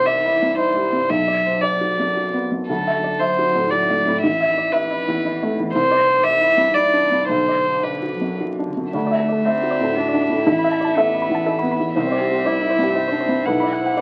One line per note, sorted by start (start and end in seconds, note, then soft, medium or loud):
0.00 1.07 C2 soft
0.00 1.08 E3 medium
0.00 1.13 C5 soft
0.00 0.07 D5 soft
0.06 0.34 D5 soft
0.06 0.57 E5 medium
0.25 0.52 E4 soft
0.42 0.69 G2 soft
0.58 0.86 E4 soft
0.58 1.11 C5 medium
0.75 1.03 G3 soft
0.93 1.10 G2 soft
1.09 2.65 B1 soft
1.09 2.46 F#3 soft
1.09 1.63 E5 medium
1.27 1.56 D5 soft
1.46 1.63 C5 soft
1.61 2.41 D5 soft
1.61 1.91 D5 soft
1.81 2.09 F#4 soft
2.00 2.27 F#2 soft
2.17 2.45 F#4 soft
2.34 2.62 B3 soft
2.52 2.69 F#2 soft
2.68 4.19 D2 soft
2.68 2.95 F#3 soft
2.68 3.21 A4 medium
2.87 3.15 E5 soft
2.96 3.21 F#3 soft
3.04 3.21 D5 soft
3.20 3.45 F#3 soft
3.20 3.72 C5 medium
3.20 3.48 E5 soft
3.39 3.65 F#4 soft
3.46 3.71 F#3 soft
3.55 3.82 A2 soft
3.71 3.97 F#3 soft
3.71 3.99 F#4 soft
3.71 4.21 D5 soft
3.90 4.16 A3 soft
3.97 4.22 F#3 soft
4.07 4.23 A2 soft
4.21 5.71 A1 soft
4.21 4.48 E3 soft
4.21 4.74 E5 medium
4.40 4.67 E5 soft
4.49 4.74 E3 soft
4.58 4.74 D5 soft
4.72 4.99 E3 soft
4.72 5.49 B4 medium
4.72 5.01 E5 soft
4.91 5.18 E4 soft
5.01 5.25 E3 soft
5.08 5.35 E2 soft
5.25 5.50 E3 soft
5.25 5.52 E4 soft
5.43 5.69 A3 soft
5.51 5.75 E3 soft
5.60 5.75 E2 soft
5.73 7.25 C2 soft
5.73 6.21 E3 soft
5.73 6.25 C5 medium
5.91 6.17 D5 soft
6.08 6.24 C5 soft
6.24 6.75 E3 soft
6.24 6.51 D5 soft
6.24 6.76 E5 medium
6.41 6.68 E4 soft
6.57 6.85 G2 soft
6.74 7.32 E3 soft
6.74 7.04 E4 soft
6.74 7.28 D5 medium
6.93 7.22 D4 soft
7.11 7.29 G2 soft
7.28 8.89 B1 soft
7.28 7.84 D3 soft
7.28 7.85 C5 medium
7.48 7.77 D5 soft
7.66 7.84 C5 soft
7.83 8.15 D3 soft
7.83 8.39 B4 soft
7.83 8.13 D5 soft
8.02 8.32 F#4 soft
8.13 8.42 F#3 soft
8.21 8.50 F#2 soft
8.40 8.68 E3 soft
8.40 8.69 F#4 soft
8.59 8.87 D4 soft
8.66 8.93 D3 soft
8.77 8.94 F#2 soft
8.92 10.48 D2 soft
8.92 10.43 D2 soft
8.92 9.47 A3 medium
8.92 9.01 D4 medium
8.92 11.90 E5 soft
9.07 9.14 D5 soft
9.11 9.39 E5 soft
9.20 9.27 A4 soft
9.28 9.40 A4 soft
9.28 9.45 D5 soft
9.45 9.98 C4 medium
9.45 9.53 D4 medium
9.45 9.73 E5 soft
9.63 9.90 F#4 soft
9.71 9.78 D5 medium
9.81 10.07 A2 soft
9.81 9.92 A4 soft
9.96 10.46 D4 medium
9.96 10.04 D4 medium
9.96 10.23 F#4 soft
10.09 10.16 D5 medium
10.14 10.40 D4 soft
10.22 10.29 D5 medium
10.30 10.46 A2 soft
10.47 11.91 A1 medium
10.47 11.97 A1 medium
10.47 10.99 E4 medium
10.47 10.54 A4 medium
10.59 10.66 B5 medium
10.64 10.90 E5 soft
10.71 10.79 A5 medium
10.80 10.97 D5 soft
10.80 10.92 A5 medium
10.97 11.71 B3 medium
10.97 11.05 A4 medium
10.97 11.23 E5 soft
11.13 11.39 E4 soft
11.22 11.29 B5 medium
11.30 11.56 E2 soft
11.35 11.42 A5 medium
11.46 11.72 E4 soft
11.46 11.53 A4 medium
11.59 11.88 B3 soft
11.59 11.66 B5 medium
11.71 11.78 B5 medium
11.79 11.95 E2 soft
11.95 13.47 C2 medium
11.95 13.43 C2 medium
11.95 12.03 C4 medium
11.95 12.48 C4 medium
11.95 13.47 E5 medium
12.07 12.14 C5 medium
12.12 12.38 D5 soft
12.20 12.27 G4 medium
12.29 12.39 G4 medium
12.29 12.45 C5 soft
12.45 12.52 C4 medium
12.45 12.95 E4 medium
12.45 12.71 D5 soft
12.62 12.88 E4 soft
12.70 12.77 C5 soft
12.79 13.05 G2 soft
12.83 12.90 G4 soft
12.95 13.47 C4 medium
12.95 13.03 C4 medium
12.95 13.22 E4 soft
13.08 13.15 C5 medium
13.12 13.39 D4 soft
13.21 13.28 C5 medium
13.29 13.46 G2 soft
13.45 14.01 B1 soft
13.45 14.00 E4 medium
13.45 13.55 B4 medium
13.45 14.01 F#5 soft
13.60 13.92 D5 soft
13.60 13.68 B5 medium
13.73 13.81 F#5 soft
13.80 13.99 C5 soft
13.86 13.94 F#5 soft
13.97 14.01 D4 soft
13.97 14.01 D5 soft